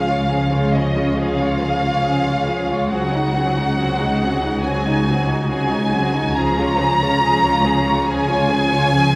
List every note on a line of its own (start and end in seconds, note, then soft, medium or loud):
0.00 2.88 C#2 soft
0.00 2.88 C#3 soft
0.00 0.74 F5 medium
0.07 0.30 G#3 soft
0.07 0.30 F4 soft
0.07 0.30 C#5 soft
0.30 0.51 F3 soft
0.30 0.51 C#4 soft
0.30 0.51 G#4 soft
0.52 0.74 G#3 soft
0.52 0.74 F4 soft
0.52 0.75 F4 soft
0.52 0.75 C#5 soft
0.73 0.97 F3 soft
0.73 0.97 C#4 soft
0.73 0.97 G#4 soft
0.73 1.17 D#5 medium
0.96 1.18 G#3 soft
0.96 1.18 F4 soft
0.96 1.18 C#5 soft
1.17 1.39 F3 soft
1.17 1.38 C#4 soft
1.17 1.38 G#4 soft
1.17 2.91 F5 medium
1.39 1.61 G#3 soft
1.39 1.61 F4 soft
1.39 1.61 C#5 soft
1.61 1.83 F3 soft
1.61 1.83 C#4 soft
1.61 1.83 G#4 soft
1.82 2.05 G#3 soft
1.82 2.04 F4 soft
1.82 2.05 F4 soft
1.82 2.04 C#5 soft
2.04 2.26 F3 soft
2.04 2.26 C#4 soft
2.04 2.24 G#4 soft
2.25 2.49 G#3 soft
2.25 2.48 F4 soft
2.25 2.49 F4 soft
2.25 2.48 C#5 soft
2.47 2.71 F3 soft
2.47 2.71 C#4 soft
2.47 2.69 G#4 soft
2.70 2.93 G#3 soft
2.70 2.92 F4 soft
2.70 2.93 F4 soft
2.70 2.92 C#5 soft
2.91 6.33 C#2 soft
2.91 6.33 C#3 soft
2.91 3.13 F#3 soft
2.91 3.13 C4 soft
2.91 3.12 F#4 soft
2.91 3.12 G#4 soft
2.91 4.62 F#5 medium
3.13 3.36 G#3 soft
3.13 3.35 D#4 soft
3.13 3.36 D#4 soft
3.13 3.34 F#4 soft
3.35 3.57 F#3 soft
3.35 3.57 C4 soft
3.35 3.56 F#4 soft
3.35 3.57 G#4 soft
3.57 3.79 G#3 soft
3.57 3.79 D#4 soft
3.57 3.80 D#4 soft
3.57 3.77 F#4 soft
3.78 3.99 F#3 soft
3.78 3.99 C4 soft
3.78 3.99 F#4 soft
3.78 3.99 G#4 soft
4.00 4.23 G#3 soft
4.00 4.22 D#4 soft
4.00 4.23 D#4 soft
4.00 4.21 F#4 soft
4.22 4.44 F#3 soft
4.22 4.44 C4 soft
4.22 4.43 F#4 soft
4.22 4.44 G#4 soft
4.45 4.66 G#3 soft
4.45 4.66 D#4 soft
4.45 4.64 F#4 soft
4.65 4.85 F#3 soft
4.65 4.85 C4 soft
4.65 4.85 F#4 soft
4.65 4.86 G#4 soft
4.65 5.49 G#5 medium
4.87 5.08 G#3 soft
4.87 5.08 D#4 soft
4.87 5.08 F#4 soft
5.07 5.29 F#3 soft
5.07 5.29 C4 soft
5.07 5.28 F#4 soft
5.07 5.30 G#4 soft
5.29 5.50 G#3 soft
5.29 5.50 D#4 soft
5.29 5.48 F#4 soft
5.49 5.70 F#3 soft
5.49 5.70 C4 soft
5.49 5.70 F#4 soft
5.49 5.70 G#4 soft
5.49 6.35 G#5 medium
5.71 5.93 G#3 soft
5.71 5.93 D#4 soft
5.71 5.92 F#4 soft
5.93 6.15 F#3 soft
5.93 6.15 C4 soft
5.93 6.14 F#4 soft
5.93 6.15 G#4 soft
6.13 6.36 G#3 soft
6.13 6.36 D#4 soft
6.13 6.37 D#4 soft
6.13 6.37 F#4 soft
6.36 9.15 C#2 soft
6.36 9.15 C#3 soft
6.36 6.57 F3 soft
6.36 6.56 C#4 soft
6.36 6.57 G#4 soft
6.36 8.08 A#5 medium
6.57 6.80 G#3 soft
6.57 6.79 F4 soft
6.57 6.81 F4 soft
6.57 6.81 C#5 soft
6.79 7.01 F3 soft
6.79 7.01 C#4 soft
6.79 7.02 G#4 soft
7.01 7.23 G#3 soft
7.01 7.23 F4 soft
7.01 7.23 C#5 soft
7.23 7.43 F3 soft
7.23 7.43 C#4 soft
7.23 7.44 G#4 soft
7.44 7.66 G#3 soft
7.44 7.66 F4 soft
7.44 7.66 C#5 soft
7.65 7.87 F3 soft
7.65 7.87 C#4 soft
7.65 7.87 G#4 soft
7.86 8.09 G#3 soft
7.86 8.08 F4 soft
7.86 8.09 F4 soft
7.86 8.08 C#5 soft
8.07 8.29 F3 soft
8.07 8.29 C#4 soft
8.07 8.28 G#4 soft
8.07 9.15 G#5 medium
8.29 8.52 G#3 soft
8.29 8.51 F4 soft
8.29 8.52 F4 soft
8.29 8.51 C#5 soft
8.50 8.73 F3 soft
8.50 8.73 C#4 soft
8.50 8.72 G#4 soft
8.72 8.95 G#3 soft
8.72 8.94 F4 soft
8.72 8.95 F4 soft
8.72 8.94 C#5 soft
8.94 9.15 F3 soft
8.94 9.15 C#4 soft
8.94 9.15 G#4 soft